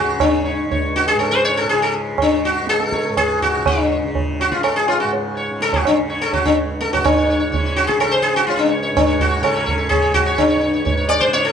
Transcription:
0.00 0.66 C#2 medium
0.00 1.14 G#2 medium
0.00 0.16 C#3 medium
0.00 0.21 F#4 medium
0.16 1.64 C#3 medium
0.20 0.97 D4 medium
0.20 tabla na loud
0.20 tabla ge medium
0.45 0.68 C#5 soft
0.66 2.60 C#2 medium
0.71 0.94 C#5 soft
0.71 tabla tin medium
0.71 tabla ge medium
0.96 1.07 F#4 medium
1.08 1.19 G#4 loud
1.15 3.09 G#2 medium
1.19 1.32 A4 medium
1.19 tabla na medium
1.31 1.43 C5 medium
1.45 1.57 C#5 medium
1.57 1.69 A4 medium
1.64 2.12 C#3 medium
1.68 1.82 G#4 medium
1.68 tabla tin medium
1.82 1.93 A4 medium
2.12 3.58 C#3 medium
2.18 2.45 D4 medium
2.18 tabla na medium
2.18 tabla ge medium
2.45 2.69 F#4 medium
2.60 4.52 C#2 medium
2.67 2.82 G#4 loud
2.67 tabla te medium
2.80 3.17 A4 loud
2.80 tabla te medium
2.92 3.15 C#5 soft
2.92 tabla ke medium
3.05 tabla te medium
3.09 5.03 G#2 medium
3.17 3.42 G#4 loud
3.17 tabla na medium
3.17 tabla ge medium
3.42 3.67 F#4 medium
3.42 tabla ge medium
3.58 4.04 C#3 medium
3.66 4.42 D4 medium
3.66 tabla na medium
3.66 tabla ge medium
4.04 5.50 C#3 medium
4.15 tabla tin medium
4.15 tabla ge medium
4.40 4.51 F#4 medium
4.40 tabla na medium
4.52 6.46 C#2 medium
4.52 4.63 F4 medium
4.52 tabla ke medium
4.63 4.74 A4 medium
4.63 tabla na medium
4.76 4.88 G#4 medium
4.88 5.00 F4 medium
4.88 tabla na medium
5.00 6.94 G#2 medium
5.00 5.11 F#4 medium
5.13 tabla tin medium
5.37 5.59 C#5 soft
5.50 6.00 C#3 medium
5.61 5.73 A4 loud
5.61 tabla te medium
5.73 5.85 F#4 medium
5.73 tabla tin medium
5.73 tabla ge medium
5.85 5.97 D4 medium
5.85 tabla na medium
5.85 tabla ge medium
6.00 7.51 C#3 medium
6.10 6.31 C#5 soft
6.22 6.33 A4 medium
6.22 tabla te medium
6.33 6.44 F#4 medium
6.33 tabla tin medium
6.33 tabla ge medium
6.45 8.46 C#2 medium
6.45 6.56 D4 medium
6.45 tabla na medium
6.45 tabla ge medium
6.81 6.93 A4 medium
6.81 tabla te medium
6.93 7.04 G#2 medium
6.93 7.05 F#4 medium
6.93 tabla tin medium
6.93 tabla ge medium
7.04 8.92 G#2 medium
7.04 7.73 D4 medium
7.04 7.16 C#5 soft
7.04 tabla na loud
7.04 tabla ge loud
7.18 7.29 C#5 soft
7.30 7.39 C#5 soft
7.40 7.51 C#5 soft
7.51 7.98 C#3 medium
7.51 7.64 C#5 soft
7.51 tabla tin medium
7.51 tabla ge medium
7.65 7.87 C#5 soft
7.76 7.87 F#4 medium
7.76 tabla na medium
7.87 8.00 G#4 medium
7.87 tabla ke medium
7.98 9.41 C#3 medium
7.98 8.13 A4 medium
7.98 tabla na medium
8.11 8.24 C5 medium
8.22 8.36 G#4 medium
8.36 8.46 F#4 loud
8.46 10.35 C#2 medium
8.46 8.55 F4 medium
8.46 tabla tin medium
8.56 8.70 D4 medium
8.56 8.60 F4 medium
8.69 8.81 C#5 soft
8.83 9.05 C#5 soft
8.92 10.83 G#2 medium
8.97 9.21 D4 medium
8.97 tabla na medium
8.97 tabla ge medium
9.07 9.29 C#5 soft
9.20 9.42 F#4 medium
9.20 tabla ge medium
9.30 9.53 C#5 soft
9.41 9.88 C#3 medium
9.41 9.89 A4 medium
9.41 tabla na medium
9.41 tabla ge medium
9.55 9.65 C#5 soft
9.66 9.77 C#5 soft
9.66 tabla ge medium
9.78 10.00 C#5 soft
9.88 11.28 C#3 medium
9.88 10.14 G#4 loud
9.88 tabla na medium
9.88 tabla ge medium
10.02 10.24 C#5 soft
10.14 10.36 F#4 loud
10.14 tabla ge medium
10.26 10.48 C#5 soft
10.35 11.52 C#2 medium
10.35 11.11 D4 medium
10.35 tabla na loud
10.35 tabla ge loud
10.49 10.60 C#5 soft
10.61 10.72 C#5 soft
10.73 10.84 C#5 soft
10.83 11.52 G#2 medium
10.83 10.96 C#5 soft
10.83 tabla tin medium
10.83 tabla ge medium
10.97 11.19 C#5 soft
11.09 11.21 D5 loud
11.09 tabla na medium
11.20 11.33 C5 loud
11.20 tabla ke medium
11.28 11.52 C#3 medium
11.33 11.45 C#5 loud
11.33 tabla te medium
11.45 11.52 A4 medium

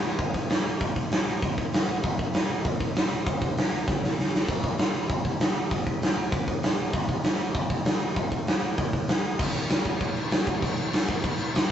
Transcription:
0.03 open hi-hat medium
0.19 kick loud
0.19 open hi-hat medium
0.34 kick medium
0.34 open hi-hat medium
0.50 snare loud
0.50 open hi-hat medium
0.66 open hi-hat medium
0.81 kick loud
0.81 open hi-hat medium
0.96 kick medium
0.96 open hi-hat medium
1.12 snare loud
1.12 open hi-hat medium
1.28 open hi-hat medium
1.42 kick loud
1.42 open hi-hat medium
1.58 kick medium
1.58 open hi-hat medium
1.73 snare loud
1.73 open hi-hat medium
1.89 open hi-hat medium
2.04 kick loud
2.04 open hi-hat medium
2.19 kick medium
2.19 open hi-hat medium
2.34 snare loud
2.34 open hi-hat medium
2.50 open hi-hat medium
2.65 kick loud
2.65 open hi-hat medium
2.80 kick medium
2.80 open hi-hat medium
2.96 snare loud
2.96 open hi-hat medium
3.11 open hi-hat soft
3.26 kick loud
3.26 open hi-hat medium
3.42 kick medium
3.42 open hi-hat medium
3.58 snare loud
3.58 open hi-hat medium
3.73 open hi-hat medium
3.88 kick loud
3.88 snare medium
4.04 snare medium
4.19 snare medium
4.35 snare medium
4.49 kick loud
4.49 open hi-hat medium
4.49 splash medium
4.63 kick medium
4.63 open hi-hat medium
4.79 snare loud
4.79 open hi-hat medium
4.94 open hi-hat medium
5.10 kick loud
5.10 open hi-hat medium
5.25 kick medium
5.25 open hi-hat medium
5.40 snare loud
5.40 open hi-hat medium
5.56 open hi-hat medium
5.71 kick loud
5.71 open hi-hat medium
5.87 kick medium
5.87 open hi-hat medium
6.02 snare loud
6.02 open hi-hat medium
6.17 open hi-hat medium
6.32 kick loud
6.32 open hi-hat medium
6.48 kick medium
6.48 open hi-hat medium
6.63 snare loud
6.63 open hi-hat medium
6.79 open hi-hat medium
6.93 kick loud
6.93 open hi-hat medium
7.08 kick medium
7.08 open hi-hat medium
7.24 snare loud
7.24 open hi-hat medium
7.40 open hi-hat medium
7.55 kick loud
7.55 open hi-hat medium
7.70 kick medium
7.70 open hi-hat medium
7.85 snare loud
7.85 open hi-hat medium
8.01 open hi-hat medium
8.16 kick loud
8.16 open hi-hat medium
8.32 kick medium
8.32 open hi-hat soft
8.47 snare loud
8.47 open hi-hat medium
8.63 open hi-hat medium
8.78 kick loud
8.78 open hi-hat medium
8.93 kick medium
8.93 open hi-hat medium
9.08 snare loud
9.08 open hi-hat medium
9.24 open hi-hat medium
9.39 kick loud
9.39 crash loud
9.39 crash medium
9.54 crash medium
9.70 snare loud
9.70 crash medium
9.85 kick medium
9.85 crash medium
10.01 kick medium
10.01 crash medium
10.17 crash medium
10.31 snare loud
10.31 crash medium
10.47 kick medium
10.47 crash medium
10.62 kick medium
10.62 crash medium
10.78 crash medium
10.93 snare loud
10.93 crash medium
11.08 kick medium
11.08 crash medium
11.24 kick loud
11.24 crash medium
11.40 crash medium
11.55 snare loud
11.55 crash medium

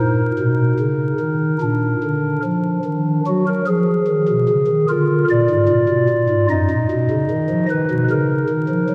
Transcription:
0.00 0.31 A#2 medium
0.00 1.58 D#4 soft
0.00 2.40 A#4 medium
0.39 0.73 B2 medium
0.80 1.14 C#3 medium
1.20 1.55 D#3 medium
1.61 1.96 A#2 medium
1.61 3.23 D4 soft
2.03 2.38 D3 medium
2.44 2.79 F3 medium
2.85 3.20 D#3 medium
3.27 3.61 F#3 medium
3.27 3.44 F#4 medium
3.47 3.65 A#4 medium
3.67 4.02 F3 medium
3.67 4.86 G#4 medium
4.08 4.25 D#3 medium
4.28 4.46 B2 medium
4.49 4.67 C#3 medium
4.67 4.86 D#3 medium
4.89 5.24 D3 medium
4.89 6.46 F4 soft
4.89 5.24 A#4 medium
5.30 5.48 A#2 medium
5.30 6.47 D5 loud
5.50 5.68 G#2 medium
5.69 5.87 A#2 medium
5.89 6.07 B2 medium
6.10 6.27 A#2 medium
6.29 6.47 G#2 medium
6.50 6.67 F#2 medium
6.50 8.95 D#4 soft
6.50 7.66 D#5 loud
6.71 6.88 A#2 medium
6.91 7.08 B2 medium
7.11 7.27 C#3 medium
7.31 7.47 D#3 medium
7.50 7.67 F3 medium
7.71 7.87 D#3 medium
7.71 8.04 B4 loud
7.90 8.07 B2 medium
8.11 8.44 C#3 medium
8.11 8.95 A#4 medium
8.49 8.66 D#3 medium
8.69 8.86 F3 medium
8.89 8.95 F#3 medium

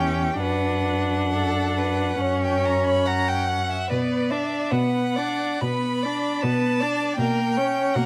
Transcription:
0.00 0.38 E2 soft
0.00 0.39 C#4 soft
0.00 0.41 G4 soft
0.00 0.40 G5 medium
0.41 2.18 F#2 soft
0.41 2.19 D4 soft
0.41 1.22 B4 soft
0.41 2.39 F#5 medium
1.33 1.79 A4 soft
1.77 2.22 B4 soft
2.21 3.67 F#2 soft
2.21 3.67 C#4 soft
2.21 3.07 C#5 soft
2.44 2.67 G5 soft
2.65 2.86 A#5 soft
2.86 3.09 B5 soft
3.06 3.89 F#5 soft
3.06 3.30 A#5 medium
3.28 3.50 G5 soft
3.49 3.70 F#5 soft
3.71 3.92 E5 soft
3.90 4.60 B2 soft
3.90 4.33 B3 soft
3.90 4.32 B4 soft
3.90 4.32 D5 soft
4.30 4.74 D4 soft
4.30 4.72 D5 soft
4.30 4.73 E5 soft
4.70 5.49 B2 soft
4.70 5.19 B3 soft
4.70 5.17 B4 soft
4.70 5.62 F#5 medium
5.15 5.63 D4 soft
5.15 5.62 D5 soft
5.61 6.31 B2 soft
5.61 6.07 B3 soft
5.61 6.04 B4 soft
5.61 6.42 B5 medium
6.03 6.45 D4 soft
6.03 6.44 D5 soft
6.41 7.07 B2 soft
6.41 6.84 B3 soft
6.41 6.82 B4 soft
6.41 7.17 A5 medium
6.80 7.19 D4 soft
6.80 7.18 D5 soft
7.17 7.83 B2 soft
7.17 7.60 A#3 soft
7.17 7.59 A#4 soft
7.17 7.95 G5 medium
7.57 7.98 C#4 soft
7.57 7.97 C#5 soft
7.93 8.06 B2 medium
7.93 8.06 A#3 soft
7.93 8.06 A#4 soft
7.93 8.06 F#5 medium

